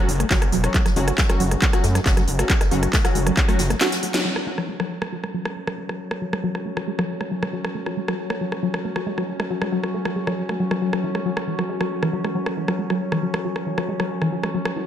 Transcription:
0.09 F#1, closed hi-hat, open hi-hat
0.20 A3, cross-stick, closed hi-hat
0.31 F#1 F#3 C#4 F#4, kick, snare, clap, closed hi-hat
0.41 G#3, cross-stick, closed hi-hat
0.52 E1 F#3, closed hi-hat, open hi-hat
0.64 F#3 C#4 F#4, cross-stick, closed hi-hat
0.74 A3, kick, clap, closed hi-hat
0.86 F#3, cross-stick, snare, closed hi-hat
0.96 F#1 F#3 G#3 C#4 F#4, closed hi-hat, open hi-hat
1.08 F#3, cross-stick, closed hi-hat
1.18 kick, snare, clap, closed hi-hat
1.30 F#3 A3 C#4 F#4, cross-stick, closed hi-hat
1.40 F#1 F#3, closed hi-hat, open hi-hat
1.51 G#3, cross-stick, closed hi-hat
1.62 F#3, kick, clap, closed hi-hat
1.73 F#3 C#4 F#4, cross-stick, closed hi-hat
1.84 F#2 A3, snare, closed hi-hat, open hi-hat
1.95 F#3, cross-stick, snare, closed hi-hat
2.06 F#1 F#3 G#3 C#4 F#4, kick, snare, clap, closed hi-hat
2.17 F#3, cross-stick, snare, closed hi-hat
2.27 F#1, closed hi-hat, open hi-hat
2.39 F#3 A3 C#4 F#4, cross-stick, closed hi-hat
2.49 F#3, kick, clap, closed hi-hat
2.61 G#3, cross-stick, snare, closed hi-hat
2.71 F#1 F#3 C#4 F#4, closed hi-hat, open hi-hat
2.83 cross-stick, closed hi-hat
2.93 A3, kick, snare, clap, closed hi-hat
3.05 F#3 C#4 F#4, cross-stick, snare, closed hi-hat
3.15 F#1 G#3, closed hi-hat, open hi-hat
3.27 F#3, cross-stick, closed hi-hat
3.37 kick, clap, closed hi-hat
3.48 F#3 A3 C#4 F#4, cross-stick, open hi-hat
3.59 F#1 F#3, snare, closed hi-hat, open hi-hat
3.70 A3, cross-stick, snare, closed hi-hat
3.81 F#3 C#4 F#4, snare, clap, closed hi-hat
3.92 snare, closed hi-hat
4.03 F#3, snare, open hi-hat
4.14 F#3 C#4 F#4, snare, closed hi-hat
4.25 F#3 C#4
4.36 cross-stick
4.47 A3
4.58 F#3, cross-stick
4.69 G#3
4.80 F#3, cross-stick
5.02 A3, cross-stick
5.12 F#3
5.24 G#3, cross-stick
5.34 F#3
5.45 cross-stick
5.56 A3
5.67 F#3, cross-stick
5.78 G#3
5.89 F#3, cross-stick
6.11 A3, cross-stick
6.22 F#3
6.33 G#3, cross-stick
6.44 F#3
6.55 cross-stick
6.66 A3
6.77 F#3, cross-stick
6.88 G#3
6.99 F#3, cross-stick
7.21 A3, cross-stick
7.31 F#3
7.43 G#3, cross-stick
7.53 F#3
7.65 cross-stick
7.75 A3
7.86 F#3, cross-stick
7.97 G#3
8.08 F#3, cross-stick
8.30 A3, cross-stick
8.41 F#3
8.52 G#3, cross-stick
8.63 F#3
8.74 cross-stick
8.85 A3
8.96 F#3, cross-stick
9.07 G#3
9.18 F#3, cross-stick
9.40 A3, cross-stick
9.50 F#3
9.62 G#3, cross-stick
9.72 F#3
9.84 cross-stick
9.94 A3
10.05 F#3, cross-stick
10.16 G#3
10.27 F#3, cross-stick
10.49 A3, cross-stick
10.60 F#3
10.71 F#3, cross-stick
10.82 F#3
10.93 F#3, cross-stick
11.04 E3
11.15 G#3, cross-stick
11.26 F#3
11.37 cross-stick
11.47 E3
11.59 F#3, cross-stick
11.69 G#3
11.81 F#3, cross-stick
12.03 E3, cross-stick
12.13 F#3
12.24 G#3, cross-stick
12.35 F#3
12.46 cross-stick
12.57 E3
12.68 F#3, cross-stick
12.79 G#3
12.90 F#3, cross-stick
13.12 E3, cross-stick
13.23 F#3
13.34 G#3, cross-stick
13.45 F#3
13.56 cross-stick
13.67 E3
13.78 F#3, cross-stick
13.89 G#3
14.00 F#3, cross-stick
14.22 E3, cross-stick
14.32 F#3
14.44 G#3, cross-stick
14.54 F#3
14.65 cross-stick
14.76 E3

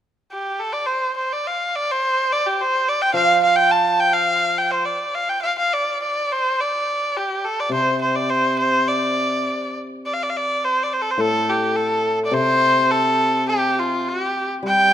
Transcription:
0.32 G4
0.59 A4
0.73 D5
0.86 C5
1.17 C5
1.32 D5
1.47 F5
1.75 D5
1.91 C5
2.32 D5
2.46 G4
2.61 C5
2.88 D5
3.01 G5
3.14 F3 F5
3.44 F5
3.56 G5
3.71 A5
4.00 G5
4.13 F5
4.58 G5
4.71 C5
4.85 D5
5.15 F5
5.29 G5
5.42 F5
5.58 F5
5.73 D5
6.03 D5
6.32 C5
6.60 D5
7.17 G4
7.45 A4
7.60 D5
7.69 C3
7.74 C5
8.02 C5
8.15 D5
8.30 C5
8.59 C5
8.88 D5
10.06 D5
10.14 F5
10.23 D5
10.30 F5
10.37 D5
10.64 C5
10.83 D5
10.93 C5
11.02 A4
11.11 C5
11.17 A2 A4
11.49 G4
11.76 A4
12.25 D5
12.31 C3 C5
12.91 A4
13.49 G4
13.79 F4
14.08 G4
14.63 G3
14.67 G5

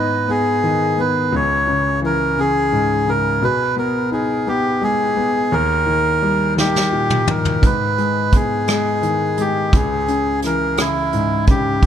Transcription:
Already playing: G#2 B3 D#4 B4
0.28 B3 G#4
0.64 D#3
0.98 B3 B4
1.32 C#2 C#5
1.67 C#3
2.02 E3 A#4
2.37 C#3 G#4
2.72 G#2
3.06 C#3 A#4
3.42 B2 B4
3.76 B3 A#4
4.11 D#4 G#4
4.47 B3 G4
4.82 G#3 G#4
5.17 B3
5.52 D#2 A#4
5.86 D#3
6.22 G3
6.57 D#3 G4, snare
6.76 snare
6.92 A#2
7.10 mid tom
7.27 D#3 A#4, mid tom
7.45 floor tom
7.62 G#2 B4, kick, closed hi-hat
7.98 G#3, closed hi-hat
8.32 B3 G#4, kick, closed hi-hat
8.68 G#3, cross-stick, closed hi-hat
9.02 D#3, closed hi-hat
9.37 G#3 G4, closed hi-hat
9.73 C#2 G#4, kick, closed hi-hat
10.08 C#3, closed hi-hat
10.42 E3 A#4, cross-stick, closed hi-hat
10.77 C#3 E4, cross-stick, closed hi-hat
11.13 G#2, closed hi-hat
11.47 C#3 G4, kick, closed hi-hat
11.82 kick, closed hi-hat

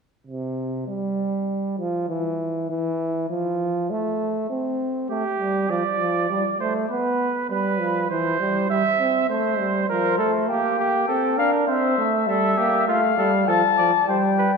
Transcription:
0.27 C3
0.88 G3
1.78 F3
2.09 E3
2.70 E3
3.30 F3
3.90 A3
4.50 C4
5.10 A3 G4
5.39 G3
5.69 F3 D5
5.99 F3
6.29 G3
6.60 A3 C5
6.89 B3 B4
7.50 G3 B4
7.80 F3
8.10 E3 C5
8.40 G3
8.70 G3 E5
8.99 C4
9.29 A3 C5
9.59 G3
9.89 F3 A#4 C5
10.18 A3 A4
10.49 A#3 G4 G5
10.79 G4
11.08 C4 A4
11.38 D4 A#4 F5
11.67 C4 C5 E5
11.98 A3
12.27 G3 A4 E5
12.57 A#3 G4
12.88 A3 F4 F5
13.17 G3 A4
13.48 F3 A4 A5
13.78 F3 D5
14.08 G3 C5 G5
14.38 B4

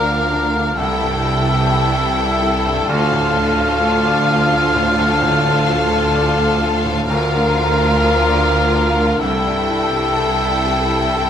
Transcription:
Already playing: D2 D3 F3 D4 F4 A#4 D5 F5 A#5
0.09 F4
0.31 D4
0.55 D3
0.78 C2 E3 E4 A4 E5 G5 A5
1.01 G2
1.25 E4
1.48 G4
1.71 A4
1.95 E5
2.18 G4
2.42 E4
2.65 G2
2.88 D2 F3 F4 F5
3.12 A2
3.36 D4
3.59 F4
3.82 A4
4.05 D5
4.29 F4
4.51 D4
4.75 A2
4.96 D2 A4 A5
5.22 A2
5.45 D4
5.68 F4
5.91 A4
6.15 D5
6.38 F4
6.61 D4
6.85 A2
7.07 D2 F3 F4 A#4 F5 A#5
7.33 D3
7.57 D4
7.81 F4
8.04 A#4
8.28 D5
8.52 F4
8.74 D4
9.00 D3
9.20 C2 E3 E4 A4 E5 G5 A5
9.46 G2
9.71 E4
9.94 G4
10.18 A4
10.42 E5
10.66 G4
10.90 E4
11.15 G2

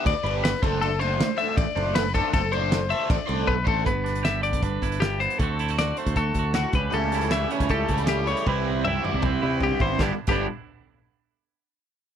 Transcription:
Already playing: B3 D4 G4 B4
0.06 D2 D5, kick, crash
0.24 G1 B3 D4 G4 B4, crash
0.44 B4, snare, crash
0.55 snare
0.62 F#1 A3 D4 A4 C5, kick, crash
0.81 A4, crash
1.00 A3 D4 A4 C5, crash
1.20 snare, crash
1.37 A3 D4 A4 C5 E5, crash
1.57 A1 D5, kick, crash
1.76 F#1 A3 D4 A4 C5, crash
1.95 B4, snare, crash
2.06 snare
2.14 A3 D4 A4 C5, kick, crash
2.33 F#1 A4, kick, crash
2.52 A3 D4 A4 C5, crash
2.72 snare, crash
2.90 A3 D4 A4 C5 E5, crash
3.10 A1 D5, kick, crash
3.27 C2 A3 D4 A4 C5, crash
3.47 B1 B4, kick
3.65 A1 A3 D4 A4 C5, kick
3.85 G1 G2 B3 B4, kick, closed hi-hat
4.04 D4, snare, closed hi-hat
4.15 closed hi-hat
4.23 G4 E5, snare, closed hi-hat
4.41 D3 D5, closed hi-hat
4.53 B1, kick, closed hi-hat
4.62 G1 D4 B4, kick, closed hi-hat
4.82 G1 E4, kick, closed hi-hat
4.92 closed hi-hat
5.00 G2 G4, snare, closed hi-hat
5.20 B3 C5, closed hi-hat
5.30 closed hi-hat
5.38 D2 D3 A3 C4 A4, kick, closed hi-hat
5.43 F#4
5.59 E4, closed hi-hat
5.68 F#4, closed hi-hat
5.78 F#4 D5, snare, closed hi-hat
5.97 A3 C5, closed hi-hat
6.06 D2, kick, closed hi-hat
6.16 D2 F#4 A4, kick, closed hi-hat
6.34 D2, kick, closed hi-hat
6.39 F#4
6.54 A2 F#4, snare, closed hi-hat
6.73 C#2 C#3 G3 B4, kick, closed hi-hat
6.91 C#2 C#3 G3 A3 C#4 E4 A4, closed hi-hat
7.12 E4, snare, closed hi-hat
7.21 closed hi-hat
7.30 C#3 E3 G3 A3 E4 E5, snare, closed hi-hat
7.48 G3 A3 C#4 E4 C#5, closed hi-hat
7.60 C#2, kick, closed hi-hat
7.69 C#2 G4 A4, kick, closed hi-hat
7.88 C#2 C#3 G3 A3 E4, kick, closed hi-hat
7.98 closed hi-hat
8.07 G3 G4, snare, closed hi-hat
8.26 C#3 G3 A3 E4 C#5, closed hi-hat
8.30 G3
8.37 closed hi-hat
8.46 C2 C3 E3 G3 C4 E4 B4, kick
8.67 C4
8.84 C3 G3 C4 E4 E5, mid tom
9.03 E3 G3 C4 E4 D5, mid tom
9.14 C2
9.22 C2 C4 B4, kick, mid tom
9.42 C3 G3 C4 E4
9.60 G2 G4, floor tom
9.79 G#1 G3 B3 C4 E4 C5, kick
9.99 G1 G2 D3 G3 B3 D4 G4, kick, snare
10.03 E4
10.27 G1 G2 D3 G3 B3 D4 G4, kick, crash
10.31 B3 D4 E4

